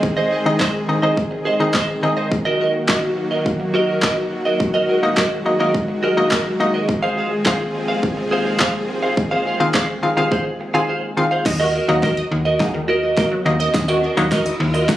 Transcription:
Already playing: D#3 G#3 C4 G#4
0.03 muted clean electric guitar stroke, kick
0.17 G#4 C5 D#5
0.31 G#4 C5 D#5
0.45 D#3 C4 D#4 G#4 D#5, muted clean electric guitar stroke
0.59 G#4 C5 D#5, kick, snare, clap
0.74 muted clean electric guitar stroke
0.88 D#3 C4 D#4 G#4 D#5, muted clean electric guitar stroke
1.02 D#3 C4 D#4 G#4 C5 D#5
1.17 muted clean electric guitar stroke, kick
1.31 muted clean electric guitar stroke
1.45 G#4 C5 D#5
1.60 D#3 C4 D#4 G#4 C5 D#5
1.74 G#4 C5 D#5, kick, snare, clap
1.88 muted clean electric guitar stroke
2.03 D#3 C4 D#4 G#4 D#5, muted clean electric guitar stroke
2.17 G#4 C5 D#5
2.31 F#3 A#3 F#4, muted clean electric guitar stroke, kick
2.45 F#4 A#4 D#5
2.60 F#4 A#4 D#5
2.74 muted clean electric guitar stroke
2.88 A#3 D#4 F#4 A#4 D#5, kick, snare, clap
3.02 muted clean electric guitar stroke
3.17 muted clean electric guitar stroke
3.31 F#4 A#4 D#5
3.45 muted clean electric guitar stroke, kick
3.60 muted clean electric guitar stroke
3.74 F#4 A#4 D#5
3.88 F#4 A#4 D#5
4.02 F#4 A#4 D#5, kick, snare, clap
4.17 muted clean electric guitar stroke
4.31 muted clean electric guitar stroke
4.45 F#4 A#4 D#5
4.60 G#3, muted clean electric guitar stroke, kick
4.74 F#4 A#4 D#5
4.88 F#4 A#4 D#5
5.03 A#3 D#4 F#4 D#5
5.17 F#4 A#4 D#5, kick, snare, clap
5.31 muted clean electric guitar stroke
5.46 A#3 D#4 F#4 D#5, muted clean electric guitar stroke
5.60 A#3 D#4 F#4 A#4 D#5
5.74 muted clean electric guitar stroke, kick
5.88 muted clean electric guitar stroke
6.03 F#4 A#4 D#5
6.17 A#3 D#4 F#4 A#4 D#5
6.31 F#4 A#4 D#5, kick, snare, clap
6.46 muted clean electric guitar stroke
6.60 A#3 D#4 F#4 D#5, muted clean electric guitar stroke
6.74 F#4 A#4 D#5
6.89 D#2 F3 C4 G#4, muted clean electric guitar stroke, kick
7.03 G#4 C5 F5
7.17 G#4 C5 F5
7.31 muted clean electric guitar stroke
7.45 D#3 C4 F4 G#4 C5 F5, kick, snare, clap
7.60 muted clean electric guitar stroke
7.74 muted clean electric guitar stroke
7.88 G#4 C5 F5
8.03 muted clean electric guitar stroke, kick
8.17 muted clean electric guitar stroke
8.31 G#4 C5 F5
8.46 G#4 C5 F5
8.59 G#4 C5 F5, kick, snare, clap
8.74 muted clean electric guitar stroke
8.88 muted clean electric guitar stroke
9.03 G#4 C5 F5
9.17 muted clean electric guitar stroke, kick
9.31 G#4 C5 F5
9.45 G#4 C5 F5
9.60 D#3 C4 F4 G#4 F5, muted clean electric guitar stroke
9.74 G#4 C5 F5, kick, snare, clap
9.88 muted clean electric guitar stroke
10.03 D#3 C4 F4 G#4 F5, muted clean electric guitar stroke
10.17 D#3 C4 F4 G#4 C5 F5
10.31 G#4 C5 F5, kick
10.45 muted clean electric guitar stroke
10.60 muted clean electric guitar stroke
10.74 D#3 C4 F4 G#4 C5 F5 G#5
10.88 G#4 C5 F5
11.03 muted clean electric guitar stroke
11.17 D#3 C4 F4 G#4 F5, muted clean electric guitar stroke
11.31 G#4 C5 F5
11.46 D#2 D#5, muted clean electric guitar stroke, kick, snare, crash, riser
11.60 F#4 A#4 D#5
11.74 F#4 A#4 D#5
11.88 D#2 F#3 A#3 D#4 F#4 D#5
12.02 D#3 F#4 A#4 D#5, kick, snare
12.17 D#5, muted clean electric guitar stroke
12.31 D#2, muted clean electric guitar stroke
12.45 F#4 A#4 D#5
12.60 F#3 A#3 D#4 F#4 G#4, kick, snare
12.74 D#3, muted clean electric guitar stroke
12.88 F#4 A#4 D#5
13.02 F#4 A#4 D#5
13.17 A#3 F#4 A#4 D#5, kick, snare
13.31 F#3, muted clean electric guitar stroke
13.45 D#2 D#3 A#3 D#4 F#4 D#5, muted clean electric guitar stroke
13.60 F#4 A#4 D#5
13.74 D#2 D#5, muted clean electric guitar stroke, kick, snare, closed hi-hat
13.88 F#4 A#4 D#5, closed hi-hat
14.02 F#4 A#4 D#5
14.17 D#2 F#3 A#3 D#4 F#4 D#5, muted clean electric guitar stroke, closed hi-hat
14.31 D#3 F#4 A#4 D#5, kick, snare, closed hi-hat
14.45 D#5, muted clean electric guitar stroke, closed hi-hat
14.60 D#2, muted clean electric guitar stroke
14.74 F#4 A#4 D#5, closed hi-hat
14.88 F#3 A#3 D#4 F#4 F#5, muted clean electric guitar stroke, kick, snare, closed hi-hat

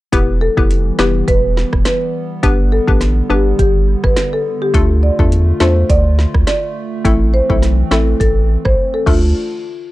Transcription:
0.12 E1 E3 G3 B3 E4 G4 B4, kick, closed hi-hat
0.41 A4
0.57 F1 B3 E4 G4 B4, kick
0.71 closed hi-hat
0.99 F1 B3 E4 G4 B4, snare
1.28 E1 B4, kick, closed hi-hat
1.57 snare
1.73 E1, kick, cross-stick
1.85 B4, snare, closed hi-hat
2.43 G1 D3 B3 D4 G4 B4, kick, closed hi-hat
2.72 A4
2.88 A1 B3 D4 G4 B4, kick
3.01 snare, closed hi-hat
3.30 G1 B3 D4 G4 B4
3.59 G1 G4, kick, closed hi-hat
4.04 G1 B4, kick, cross-stick
4.16 snare, closed hi-hat
4.33 A4
4.62 G4
4.74 D2 A3 D4 F4 A4, kick, closed hi-hat
5.03 D5
5.19 E2 A3 D4 F4 A4, kick
5.32 closed hi-hat
5.60 E2 A3 D4 F4 A4 C5, snare
5.90 D2 D5, kick, closed hi-hat
6.19 snare
6.34 D2, kick, cross-stick
6.47 D5, snare, closed hi-hat
7.05 A1 E3 A3 C4 E4 A4, kick, closed hi-hat
7.34 C5
7.50 B1 A3 C4 E4 A4, kick
7.62 snare, closed hi-hat
7.91 A1 A3 C4 E4 A4, snare
8.20 A1 A4, kick, closed hi-hat
8.65 A1 C5, kick, cross-stick
8.94 A4
9.06 D2 A3 D4 F4 A4, kick, crash

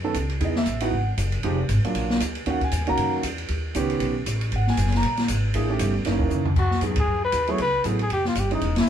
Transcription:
Already playing: F#2
0.04 D#3 B3 C#4 A4
0.14 C#2, kick, hi-hat pedal, ride
0.30 ride
0.41 E2 E3 B3 D#4 G#4, kick, ride
0.45 D#5
0.56 E5, snare
0.66 A1, kick, hi-hat pedal, ride
0.80 E3 B3 D#4 F#4 F#5, ride
0.92 G#1, kick
1.18 F#1, kick, hi-hat pedal, ride
1.32 ride
1.43 F1 F3 G#3 D#4 G4, kick, ride
1.69 G#1, kick, hi-hat pedal, ride
1.84 F#3 A#3 D4 F4, muted upright bass stroke, ride
1.95 A#1, kick, ride
2.10 snare
2.20 D2, kick, hi-hat pedal, ride
2.35 ride
2.46 D#2 D#3 A#3 C#4 F#4, kick, ride
2.50 F#5
2.61 G#5, kick, ride
2.72 E2, hi-hat pedal, ride
2.81 D#2
2.87 C#2 D#3 A#3 C#4 F#4 A#5, ride
2.97 F#2, kick, ride
3.23 E2, kick, hi-hat pedal, ride
3.38 ride
3.48 D#2, kick, ride
3.75 C#2 D#3 B3 C#4 G4, kick, hi-hat pedal, ride
3.90 ride
4.00 B1, kick, ride
4.26 A1, kick, hi-hat pedal, ride
4.41 ride
4.52 G#1, kick, ride
4.56 F#5
4.67 G#5, snare
4.77 F#1, kick, hi-hat pedal, ride
4.86 snare
4.92 snare, ride
4.97 A#5
5.03 A#1, kick, ride
5.17 snare, ride
5.28 G#1, kick, hi-hat pedal, ride
5.54 A1 E3 A#3 D4 G#4, kick, ride
5.70 D#3 A3 C#4 G4
5.79 G1, kick, hi-hat pedal, ride
6.05 F#1 E3 A#3 C#4 D#4, kick, snare, ride
6.20 kick
6.30 C#2, floor tom, hi-hat pedal
6.45 floor tom
6.56 F#2 F#4, kick, crash
6.71 snare
6.81 G#2 F#3 G#3 B3 D#4 G#4, kick, hi-hat pedal, ride
6.96 kick, ride
7.00 G#4
7.07 F#2
7.25 B4
7.32 D#2, kick, hi-hat pedal, ride
7.47 F#3 A3 B3 E4 G#4 C#5, ride
7.58 C#2 B4, kick, ride
7.84 A1 F#3 A3 B3 E4 G#4, kick, hi-hat pedal, ride
7.99 G#4, ride
8.10 F1 G4, kick, ride
8.25 F4, snare
8.35 G1 G4, kick, hi-hat pedal, ride
8.51 E3 G#3 C#4 D#4 G#4, ride
8.61 E1, kick, ride
8.76 E4, snare, ride

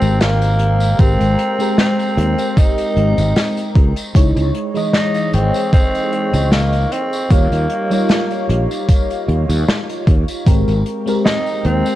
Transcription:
Already playing: G#3 C4 G4 A#4 C5 G5 A#5
0.02 G#1, closed hi-hat, tambourine
0.20 A#3, snare, closed hi-hat, tambourine
0.42 closed hi-hat, tambourine
0.59 closed hi-hat
0.80 closed hi-hat, tambourine
0.98 G#1 G#3 C4 G4 A#4, kick, closed hi-hat, tambourine
1.20 G#1, closed hi-hat, tambourine
1.38 closed hi-hat
1.58 G#3 C4 G4 A#4, closed hi-hat, tambourine
1.78 C4, snare, closed hi-hat, tambourine
1.99 closed hi-hat, tambourine
2.17 D#2, closed hi-hat
2.38 closed hi-hat, tambourine
2.57 D#4, kick, closed hi-hat, tambourine
2.78 closed hi-hat, tambourine
2.96 G#1, closed hi-hat
3.18 G#1, closed hi-hat, tambourine
3.36 snare, closed hi-hat, tambourine
3.57 closed hi-hat, tambourine
3.75 C#2 G#4 D#5 C#6, kick, closed hi-hat
3.96 closed hi-hat, tambourine
4.14 C#2 G#3 D#4 E4 C#5, kick, closed hi-hat, tambourine
4.36 C#2, closed hi-hat, tambourine
4.55 closed hi-hat
4.74 E3 G#3 D#4 D#5, closed hi-hat, tambourine
4.93 D#4, snare, closed hi-hat, tambourine
5.14 closed hi-hat, tambourine
5.33 G#1 C4, closed hi-hat
5.54 closed hi-hat, tambourine
5.73 C4, kick, closed hi-hat, tambourine
5.95 closed hi-hat, tambourine
6.13 closed hi-hat
6.33 C#2, closed hi-hat, tambourine
6.52 A#3, snare, closed hi-hat, tambourine
6.73 closed hi-hat, tambourine
6.91 C4 G4 F5, closed hi-hat
7.13 closed hi-hat, tambourine
7.30 D#2 G3 A#3 D#4 F4 C#5, kick, closed hi-hat, tambourine
7.52 D#2, closed hi-hat, tambourine
7.70 closed hi-hat
7.90 G3 D#4 F4 C#5, closed hi-hat, tambourine
8.09 snare, closed hi-hat, tambourine
8.31 closed hi-hat, tambourine
8.49 A#1, closed hi-hat
8.71 closed hi-hat, tambourine
8.89 kick, closed hi-hat, tambourine
9.10 closed hi-hat, tambourine
9.28 D#2, closed hi-hat
9.49 D#2, closed hi-hat, tambourine
9.68 snare, closed hi-hat, tambourine
9.89 closed hi-hat, tambourine
10.07 D#2, kick, closed hi-hat
10.28 closed hi-hat, tambourine
10.46 G#1 G#3 C4 G4 A#4 C5 G5 A#5, kick, closed hi-hat, tambourine
10.68 G#1, closed hi-hat, tambourine
10.86 closed hi-hat
11.06 G#3 C4 G4 A#4, closed hi-hat, tambourine
11.25 D#4, snare, closed hi-hat, tambourine
11.46 closed hi-hat, tambourine
11.65 D#2 C4, closed hi-hat
11.86 closed hi-hat, tambourine

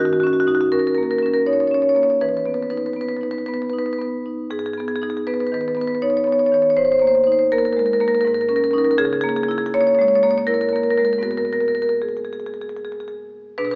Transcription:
Already playing: D#3
0.05 F#4
0.13 F#4
0.20 C#4 F#4
0.27 F#4
0.33 F#4
0.40 F#4
0.47 D#4 F#4
0.55 F#4
0.61 F#4
0.72 C#4 A#4
0.79 A#4
0.87 A#4
0.95 A#3 A#4
1.03 A#4
1.11 A#4
1.19 C#4 A#4
1.26 A#4
1.34 A#4
1.46 D#4 C#5
1.53 C#5
1.60 C#5
1.67 C#4 C#5
1.74 C#5
1.82 C#5
1.89 C#5
1.95 A#3 C#5
2.03 C#5
2.10 C#5
2.21 E3 B4
2.29 B4
2.37 B4
2.46 B3 B4
2.54 B4
2.63 B4
2.70 D#4 B4
2.78 B4
2.86 B4
2.93 B3 B4
3.01 B4
3.09 B4
3.17 B4
3.21 D#4 B4
3.31 B4
3.38 B4
3.46 B3 B4
3.54 B4
3.62 B4
3.70 D#4 B4
3.79 B4
3.86 B4
3.93 B4
3.98 B3 B4
4.26 D#4
4.50 G#2 G#4
4.59 G#4
4.66 G#4
4.73 G#4
4.77 B3 G#4
4.88 G#4
4.96 G#4
5.02 D#4 G#4
5.10 G#4
5.17 G#4
5.27 B3 B4
5.34 B4
5.40 B4
5.47 B4
5.52 D#3 B4
5.61 B4
5.68 B4
5.75 B3 B4
5.81 B4
5.88 B4
5.95 B4
6.02 D#4 C#5
6.10 C#5
6.17 C#5
6.24 B3 C#5
6.32 C#5
6.39 C#5
6.46 C#5
6.52 D#3 C#5
6.62 C#5
6.70 C#5
6.77 G#2 C5
6.85 C5
6.92 C5
6.99 A#3 C5
7.07 C5
7.15 C5
7.24 D#4 C5
7.32 C5
7.39 C5
7.52 A#3 A#4
7.58 A#4
7.65 A#4
7.73 G#3 A#4
7.79 A#4
7.86 A#4
7.93 A#4
8.00 A#3 A#4
8.08 A#4
8.15 A#4
8.21 G#2 A#4
8.27 A#4
8.34 A#4
8.41 A#4
8.49 C#4 A#4
8.56 A#4
8.64 A#4
8.71 C#4 D#4 A#4
8.78 A#4
8.85 A#4
8.91 A#4
8.98 C#3 G#4
9.05 G#4
9.13 G#4
9.21 A#3 G#4
9.29 G#4
9.36 G#4
9.43 G#4
9.48 E4 G#4
9.58 G#4
9.66 G#4
9.74 A#3 C#5
9.81 C#5
9.87 C#5
9.95 G#3 C#5
10.01 C#5
10.08 C#5
10.15 C#5
10.23 A#3 C#5
10.31 C#5
10.38 C#5
10.47 E4 A#4
10.54 A#4
10.61 A#4
10.69 A#3 A#4
10.76 A#4
10.83 A#4
10.90 A#4
10.98 G#3 A#4
11.05 A#4
11.13 A#4
11.18 G#2 B3 F#4
11.23 A#4
11.31 A#4
11.37 A#4
11.45 A#4
11.53 A#4
11.61 A#4
11.68 A#4
11.75 A#4
11.82 A#4
11.89 A#4
12.02 G#4
12.09 G#4
12.17 G#4
12.25 G#4
12.33 G#4
12.40 G#4
12.46 G#4
12.54 G#4
12.61 G#4
12.69 G#4
12.77 G#4
12.85 G#4
12.92 G#4
13.00 G#4
13.08 G#4
13.58 B2 D4 G#4 B4
13.65 B2 D4 G#4 B4
13.71 B4

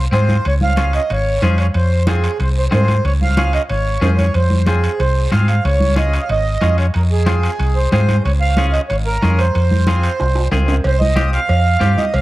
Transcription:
0.12 G#2 C4 F4 G#4 C5, high conga, short guiro
0.29 high conga, short guiro
0.45 C#2 C#5, high conga, high timbale, long guiro
0.61 F5, high conga
0.77 C#4 F4 G#4, high conga, high timbale, short guiro
0.93 D#5, high timbale, short guiro
1.10 G#1 C#5, high conga, high timbale, long guiro
1.42 F2 C#4 F4 G#4 C5, high conga, high timbale, short guiro
1.58 C#5, high timbale, short guiro
1.74 F2 C5, high conga, high timbale, long guiro
2.07 C4 F4 G#4, high conga, high timbale, short guiro
2.24 high timbale, short guiro
2.39 C2 C5, high conga, high timbale, long guiro
2.58 C5
2.71 G#2 C4 F4 G#4 C5, high conga, high timbale, low timbale, short guiro
2.88 high conga, high timbale, short guiro
3.04 C#2 C#5, high conga, high timbale, long guiro
3.22 F5, high conga
3.37 C#4 F4 G#4, high conga, high timbale, short guiro
3.53 D#5, high timbale, short guiro
3.69 G#1 C#5, high conga, high timbale, long guiro
4.01 F2 C#4 F4 G#4 C5, high conga, high timbale, low timbale, short guiro
4.18 C#5, high conga, high timbale, short guiro
4.34 F2 C5, high conga, high timbale, long guiro
4.50 high conga
4.66 C4 F4 G#4, high conga, high timbale, short guiro
4.84 high timbale, short guiro
4.99 C2 C5, high conga, high timbale, long guiro
5.32 G#2 C4 F4 G#4 F5, high conga, high timbale, short guiro
5.48 F5, high timbale, short guiro
5.64 C#2 C#5, high conga, high timbale, long guiro
5.80 high conga
5.96 C#4 F4 G#4 D#5, high conga, high timbale, short guiro
6.13 high timbale, short guiro
6.22 F5
6.29 G#1 D#5, high conga, high timbale, long guiro
6.61 F2 C#4 F4 G#4, high conga, high timbale, short guiro
6.78 C#5, high timbale, short guiro
6.94 F2 A#4, high conga, high timbale, long guiro
7.12 G#4
7.26 C4 F4 G#4, high conga, high timbale, short guiro
7.43 high timbale, short guiro
7.59 C2, high conga, high timbale, long guiro
7.76 C5
7.92 G#2 C4 F4 G#4 C5, high conga, high timbale, short guiro
8.09 high conga, high timbale, short guiro
8.24 C#2 C#5, high conga, high timbale, long guiro
8.40 F5
8.57 C#4 F4 G#4, high conga, high timbale, short guiro
8.67 F5
8.73 D#5, high timbale, short guiro
8.88 G#1 C#5, high conga, high timbale, long guiro
9.06 A#4
9.22 F2 C#4 F4 G#4, high conga, high timbale, short guiro
9.39 C5, high timbale, short guiro
9.55 F2, high conga, high timbale, long guiro
9.71 high conga
9.87 C4 F4 G#4, high conga, high timbale, short guiro
10.03 high timbale, short guiro
10.20 C2, high conga, high timbale, long guiro
10.35 high timbale
10.52 C#2 C4 F4 G#4, high conga, low timbale, short guiro
10.68 low timbale, short guiro
10.84 C2 C5, cowbell, high conga, long guiro
11.00 D#5, high conga
11.16 C4 F4 G4, cowbell, high conga, short guiro
11.33 F5, short guiro
11.48 F2, cowbell, high conga, long guiro
11.80 G2 C4 F4 G4, cowbell, high conga, short guiro
11.98 D#5, high conga, short guiro
12.14 C2 F5, cowbell, high conga, long guiro

